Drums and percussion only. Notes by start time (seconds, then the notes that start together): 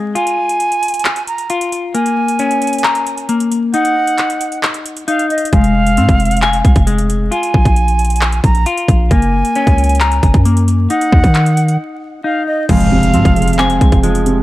0.16 closed hi-hat
0.27 closed hi-hat
0.49 closed hi-hat
0.60 closed hi-hat
0.72 closed hi-hat
0.83 closed hi-hat
0.88 closed hi-hat
0.94 closed hi-hat
0.99 closed hi-hat
1.05 clap, closed hi-hat
1.16 closed hi-hat
1.27 closed hi-hat
1.38 closed hi-hat
1.50 closed hi-hat
1.61 closed hi-hat
1.72 closed hi-hat
1.95 closed hi-hat
2.06 closed hi-hat
2.28 closed hi-hat
2.39 closed hi-hat
2.51 closed hi-hat
2.62 closed hi-hat
2.67 closed hi-hat
2.73 closed hi-hat
2.78 closed hi-hat
2.84 clap, closed hi-hat
2.95 closed hi-hat
3.07 closed hi-hat
3.18 closed hi-hat
3.29 closed hi-hat
3.40 closed hi-hat
3.52 closed hi-hat
3.74 closed hi-hat
3.85 closed hi-hat
4.07 closed hi-hat
4.18 clap, closed hi-hat
4.30 closed hi-hat
4.41 closed hi-hat, open hi-hat
4.52 closed hi-hat
4.63 clap, closed hi-hat
4.74 closed hi-hat
4.86 closed hi-hat
4.97 closed hi-hat
5.08 closed hi-hat
5.19 closed hi-hat
5.30 closed hi-hat
5.38 closed hi-hat
5.45 closed hi-hat
5.53 kick, closed hi-hat
5.64 closed hi-hat
5.86 closed hi-hat
5.97 closed hi-hat
6.09 kick, closed hi-hat
6.20 closed hi-hat
6.25 closed hi-hat
6.31 closed hi-hat
6.37 closed hi-hat
6.42 clap, closed hi-hat
6.53 closed hi-hat
6.65 kick, closed hi-hat
6.76 kick, closed hi-hat
6.87 closed hi-hat
6.98 closed hi-hat
7.10 closed hi-hat
7.32 closed hi-hat
7.43 closed hi-hat
7.54 kick
7.65 kick, closed hi-hat
7.76 closed hi-hat
7.88 closed hi-hat
7.99 closed hi-hat
8.05 closed hi-hat
8.10 closed hi-hat
8.16 closed hi-hat
8.21 clap, closed hi-hat
8.32 closed hi-hat
8.44 kick, closed hi-hat
8.55 closed hi-hat
8.66 closed hi-hat
8.78 closed hi-hat
8.88 kick, closed hi-hat
9.11 kick, closed hi-hat
9.22 closed hi-hat
9.45 closed hi-hat
9.55 closed hi-hat
9.67 kick, closed hi-hat
9.78 closed hi-hat
9.84 closed hi-hat
9.89 closed hi-hat
9.95 closed hi-hat
10.01 clap, closed hi-hat
10.12 closed hi-hat
10.23 kick, closed hi-hat
10.34 kick, closed hi-hat
10.45 closed hi-hat
10.57 closed hi-hat
10.68 closed hi-hat
10.90 closed hi-hat
11.01 closed hi-hat
11.12 kick
11.24 kick, closed hi-hat
11.34 clap, closed hi-hat
11.46 closed hi-hat
11.57 closed hi-hat, open hi-hat
11.68 closed hi-hat
12.69 kick, closed hi-hat, crash
12.80 closed hi-hat
13.03 closed hi-hat
13.14 closed hi-hat
13.25 kick, closed hi-hat
13.36 closed hi-hat
13.42 closed hi-hat
13.48 closed hi-hat
13.53 closed hi-hat
13.59 clap, closed hi-hat
13.70 closed hi-hat
13.81 kick, closed hi-hat
13.92 kick, closed hi-hat
14.03 closed hi-hat
14.15 closed hi-hat
14.26 closed hi-hat